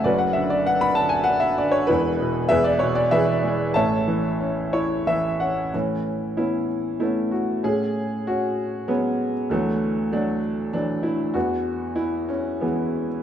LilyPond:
<<
  \new Staff \with { instrumentName = "Grand piano" } { \time 3/4 \key a \major \tempo 4 = 96 << { d''16 fis''16 e''16 d''16 fis''16 b''16 a''16 gis''16 fis''16 e''16 d''16 cis''16 | b'4 e''16 d''16 cis''16 d''16 e''4 | a''2 r4 | cis'4 e'4 e'8 fis'8 |
gis'4 fis'4 b8. r16 | a4 d'4 d'8 e'8 | fis'4 e'8 cis'8 b8. r16 | } \\ { <fis' b'>4. r4. | e'4 <gis' b'>4 <gis' b'>4 | <cis'' e''>2 r4 | e4 <b cis'>4. r8 |
cis'4 cis'4. r8 | <e fis>4 <fis a>4. r8 | b4. r8 <e gis>4 | } >> }
  \new Staff \with { instrumentName = "Grand piano" } { \clef bass \time 3/4 \key a \major <fis,, fis,>8 d8 d'8 d8 d'8 d8 | <e,, e,>8 b,8 <e,, e,>8 b,8 e8 gis8 | <a,, a,>8 e8 cis'8 <e' cis''>8 <e e''>8 <cis' fis''>8 | a,2 <a b cis'>4 |
a,2 <fis gis cis'>4 | d,2 <e fis>4 | e,2. | }
>>